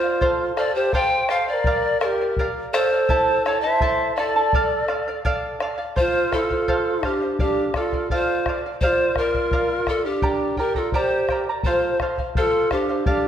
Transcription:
Already playing: quena F4, pan flute C5
0.03 charango D5 F5
0.21 charango A4 C5 F5, bombo low
0.57 quena A4, charango A4 C5 F5, pan flute D5, bombo rim
0.75 quena G4, pan flute C5, charango C5 F5
0.93 charango A4 C5 F5, quena C5, pan flute G5, bombo low
1.29 charango A4 C5 F5, quena C5, pan flute F5, bombo rim
1.48 quena C5, charango C5 F5, pan flute D5
1.53 quena A#4
1.64 charango A#4 D5 F5, bombo low
2.00 quena A4, pan flute A#4, charango A#4 D5 F5, bombo rim
2.05 quena G4
2.21 charango D5 F5
2.37 charango A#4 D5 F5, bombo low
2.73 quena A4, charango A#4 D5 F5, pan flute C5, bombo rim
2.92 charango D5 F5
3.09 charango E4 A4 E5 A5, bombo low
3.45 charango E4 A4 E5 A5, quena A4, pan flute C#5, bombo rim
3.61 charango A4 A5, quena C5, pan flute E5
3.65 charango E4
3.81 charango E4 A4 E5 A5, bombo low
4.16 charango E4 A4 E5 A5, quena A4, pan flute D5, bombo rim
4.36 charango E4 A4 A5
4.53 charango A4 D5 F5, bombo low
4.88 charango A4 D5 F5, bombo rim
5.08 charango D5 F5
5.25 charango A4 D5 F5, bombo low
5.60 charango A4 D5 F5, bombo rim
5.78 charango D5 F5
5.96 charango A4 C5 F5, pan flute C5, bombo low
6.00 quena F4
6.32 quena F4, charango A4 C5 F5, pan flute A4, bombo rim, bombo low
6.50 charango C5 F5, bombo low
6.68 charango A4 C5 F5, bombo low
7.03 quena D4, pan flute G4, charango A4 C5 F5, bombo rim, bombo low
7.22 charango C5 F5
7.39 quena D4, pan flute G4, charango A4 D5 F5, bombo low
7.74 charango A4 D5 F5, pan flute A4, bombo rim, bombo low
7.78 quena F4
7.93 charango D5 F5, bombo low
8.10 quena F4, charango A4 D5 F5, pan flute C5, bombo low
8.46 charango A4 D5 F5, bombo rim, bombo low
8.66 charango D5 F5
8.81 quena G4, charango A#4 D5 F5, pan flute C5, bombo low
8.87 quena F4
9.16 quena F4, pan flute A#4, charango A#4 D5, bombo rim, bombo low
9.20 charango F5
9.34 charango D5 F5, bombo low
9.51 charango A#4 D5 F5, bombo low
9.87 quena F4, pan flute A4, charango A#4 D5 F5, bombo rim, bombo low
10.05 quena D4, pan flute G4, charango D5 F5
10.22 charango G4 A#4 D5 G5 A#5, bombo low
10.57 quena G4, charango A#4 D5 G5 A#5, pan flute A#4, bombo low
10.75 quena F4, pan flute A4, charango A#4 D5 A#5, bombo low
10.92 charango G4 A#4 D5 G5 A#5, pan flute C5, bombo low
10.97 quena G4
11.29 charango A#4 D5 G5 A#5, bombo rim, bombo low
11.49 charango A#4 D5 A#5
11.63 quena F4, charango A4 C5 F5, pan flute C5, bombo low
12.00 charango A4 C5 F5, bombo rim, bombo low
12.18 charango C5 F5, bombo low
12.35 quena G4, charango A4 C5 F5, pan flute A4, bombo low
12.43 quena F4
12.71 quena D4, pan flute G4, charango A4 C5 F5, bombo rim, bombo low
12.89 charango C5 F5
13.06 quena D4, pan flute G4, charango A4 D5 F5, bombo low

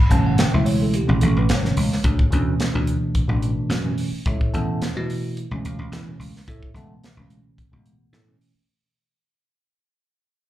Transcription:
0.00 tine electric piano B5
0.10 slap bass G1, tine electric piano B2 E3 A3 C#4 A5, closed hi-hat
0.26 tine electric piano F#5
0.38 tine electric piano G5, snare, closed hi-hat
0.53 slap bass C#2, tine electric piano B2 E3 A3 E4 E5
0.65 tine electric piano C#5, open hi-hat
0.82 tine electric piano A4
0.94 tine electric piano G4, closed hi-hat
1.07 slap bass A1, tine electric piano B2 E3 A3 C#4
1.11 tine electric piano G#4
1.21 slap bass A1, tine electric piano A4, closed hi-hat
1.37 slap bass A1, tine electric piano B4
1.49 slap bass G1, tine electric piano C#5, snare, closed hi-hat
1.63 tine electric piano B2 E3 A3 C#4, snare
1.77 slap bass C#2, open hi-hat
1.92 tine electric piano A3 B3, snare
2.04 slap bass D2, kick, closed hi-hat
2.19 kick
2.31 slap bass D2, tine electric piano B2 E3 A3 C#4, closed hi-hat
2.60 snare, closed hi-hat
2.73 slap bass D2, tine electric piano B2 E3 A3 D4
2.87 closed hi-hat
3.15 kick, closed hi-hat
3.28 slap bass A1, tine electric piano B2 E3 A3 D4
3.42 closed hi-hat
3.57 muted slap bass stroke
3.69 slap bass F#2, snare, closed hi-hat
3.84 tine electric piano B2 E3 A3 C#4
3.98 open hi-hat
4.12 tine electric piano A3 C#4, muted slap bass stroke
4.26 slap bass C#2, tine electric piano E4 A4 C#5 E5, kick, closed hi-hat
4.41 muted slap bass stroke, kick
4.53 slap bass E2, tine electric piano B2 E3 A3 C#4 A4 E5 F#5 A5, closed hi-hat
4.82 snare, closed hi-hat
4.96 tine electric piano B2 E3 A3 E4, slap bass B2
5.10 open hi-hat
5.37 closed hi-hat
5.51 slap bass C#2, tine electric piano B2 E3 A3 C#4
5.65 slap bass C#2, closed hi-hat
5.79 slap bass C#2
5.92 slap bass E2, snare, closed hi-hat
6.07 tine electric piano B2 E3 A3 C#4
6.19 slap bass C#2, open hi-hat
6.36 tine electric piano E4, snare
6.48 slap bass A2, tine electric piano E4 A4 C#5 E5, kick, closed hi-hat
6.63 kick
6.74 slap bass C#2, tine electric piano B2 E3 A3 B3 A4 E5 F#5 A5, closed hi-hat
7.04 snare, closed hi-hat
7.16 slap bass C#2, tine electric piano B2 E3 A3 C#4
7.30 closed hi-hat
7.58 kick, closed hi-hat
7.72 slap bass C#2, tine electric piano B2 E3 A3 B3
7.86 closed hi-hat
8.13 slap bass A2, snare, closed hi-hat
8.27 tine electric piano B2 E3 A3 C#4
8.41 open hi-hat
8.55 muted slap bass stroke

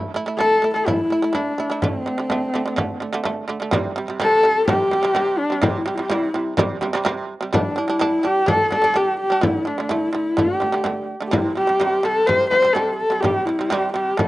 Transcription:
Already playing: shamisen E4
0.14 shamisen A3 E4, frame drum
0.26 shamisen A3 E4
0.38 shamisen A3 E4, horsehead fiddle A4, frame drum
0.62 shamisen A3 E4, frame drum
0.74 shamisen A3 E4, horsehead fiddle A4
0.86 shamisen A3 E4, horsehead fiddle E4, frame drum
1.10 shamisen A3 E4
1.22 shamisen A3 E4
1.33 shamisen A3 E4, horsehead fiddle D4, frame drum
1.58 shamisen A3 E4, frame drum
1.70 shamisen A3 E4
1.82 shamisen D3 A3, horsehead fiddle C4, frame drum
2.06 shamisen D3 A3, frame drum
2.18 shamisen D3 A3
2.30 shamisen D3 A3, frame drum
2.54 shamisen D3 A3, frame drum
2.66 shamisen D3 A3
2.76 shamisen D3 A3, frame drum
3.00 shamisen D3 A3
3.13 shamisen D3 A3
3.24 shamisen D3 A3, frame drum
3.48 shamisen D3 A3, frame drum
3.60 shamisen D3 A3
3.71 shamisen C3 G3, frame drum
3.96 shamisen C3 G3
4.08 shamisen C3 G3, frame drum
4.20 shamisen C3 G3, horsehead fiddle A4, frame drum
4.43 shamisen C3 G3, frame drum
4.68 shamisen C3 G3, horsehead fiddle G4, frame drum
4.91 shamisen C3 G3, frame drum
5.03 shamisen C3 G3, frame drum
5.15 shamisen C3 G3, frame drum
5.39 horsehead fiddle D4
5.50 shamisen C3 G3
5.62 shamisen C3 G3, horsehead fiddle E4, frame drum
5.70 horsehead fiddle G4
5.78 horsehead fiddle E4
5.86 shamisen C3 G3, horsehead fiddle G4
5.95 shamisen C3, horsehead fiddle E4, frame drum
5.99 shamisen G3, horsehead fiddle G4
6.10 shamisen C3 G3, horsehead fiddle E4, frame drum
6.34 shamisen C3 G3, frame drum
6.57 shamisen C3 G3, frame drum
6.81 shamisen C3 G3, frame drum
6.93 shamisen C3 G3, frame drum
7.05 shamisen C3 G3, frame drum
7.41 shamisen C3 G3
7.53 shamisen G3 D4, horsehead fiddle D4, frame drum
7.76 shamisen G3 D4, horsehead fiddle E4
7.88 shamisen G3 D4, frame drum
7.99 shamisen G3 D4, frame drum
8.23 shamisen G3 D4, horsehead fiddle G4, frame drum
8.46 shamisen G3 D4, horsehead fiddle A4, frame drum
8.71 shamisen G3 D4, horsehead fiddle A4, frame drum
8.82 shamisen G3 D4, frame drum
8.94 shamisen G3 D4, horsehead fiddle G4, frame drum
9.20 horsehead fiddle G4
9.30 shamisen G3 D4
9.41 shamisen D3 A3, horsehead fiddle E4, frame drum
9.65 shamisen D3 A3, horsehead fiddle D4
9.78 shamisen D3 A3, frame drum
9.89 shamisen D3 A3, horsehead fiddle E4, frame drum
10.13 shamisen D3 A3, horsehead fiddle E4, frame drum
10.37 shamisen D3 A3, horsehead fiddle G4, frame drum
10.60 shamisen D3 A3, frame drum
10.72 shamisen D3 A3, frame drum
10.84 shamisen D3 A3, frame drum
11.21 shamisen D3 A3
11.27 horsehead fiddle G4
11.31 shamisen C3 G3, horsehead fiddle E4, frame drum
11.55 shamisen C3 G3, horsehead fiddle G4
11.67 shamisen C3 G3, frame drum
11.80 shamisen C3 G3, frame drum
12.03 shamisen C3 G3, horsehead fiddle A4, frame drum
12.26 shamisen C3 G3, horsehead fiddle C5, frame drum
12.50 shamisen C3 G3, horsehead fiddle C5, frame drum
12.62 shamisen C3 G3, frame drum
12.74 shamisen C3 G3, horsehead fiddle A4, frame drum
12.97 horsehead fiddle A4
13.10 shamisen C3 G3
13.21 shamisen C3 G3, horsehead fiddle G4, frame drum
13.46 shamisen C3 G3, horsehead fiddle E4
13.59 shamisen C3 G3, frame drum
13.70 shamisen C3 G3, horsehead fiddle G4, frame drum
13.93 shamisen C3 G3, horsehead fiddle G4, frame drum
14.17 shamisen C3 G3, horsehead fiddle A4, frame drum

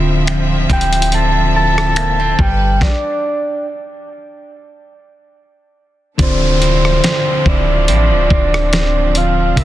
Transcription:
Already playing: 808-style bass D1, tine electric piano D3 C4 F4 E5, string section D3 F3 C4 E5, clean electric guitar D3 F3 C4 E4
0.27 clean electric guitar F3, finger snap, closed hi-hat
0.70 808-style bass D1, clean electric guitar F3 C4 E4, soft synth lead G5, kick, closed hi-hat
0.81 closed hi-hat
0.93 closed hi-hat
1.02 closed hi-hat
1.12 clean electric guitar C4, soft synth lead A5, closed hi-hat
1.54 clean electric guitar E4, soft synth lead A5
1.78 cross-stick
1.96 clean electric guitar A#3, finger snap, closed hi-hat
2.20 clean electric guitar C4
2.39 808-style bass G1, clean electric guitar G3, string section G3 A4 B4, soft synth lead G5, kick
2.81 soft synth lead D5, kick, snare
6.18 808-style bass D1, tine electric piano D3 C4 F4 D5, string section D3 F3 C4 D4, clean electric guitar D3, kick, closed hi-hat, downlifter
6.22 soft synth lead C5
6.62 clean electric guitar F3 C4 E4, closed hi-hat
6.85 cross-stick
7.04 clean electric guitar C4, snare, closed hi-hat
7.46 808-style bass D1, clean electric guitar E4, soft synth lead D5, kick
7.88 808-style bass A1, clean electric guitar F3 C4 E4, closed hi-hat
8.11 808-style bass D1
8.30 808-style bass D1, clean electric guitar C4, kick
8.54 cross-stick
8.73 clean electric guitar F3 C4, snare, closed hi-hat
9.15 soft synth lead F5, closed hi-hat
9.56 808-style bass C2, tine electric piano C3 C4 A#4 E5, clean electric guitar C3, string section C3 A#4, soft synth lead E5, kick, closed hi-hat

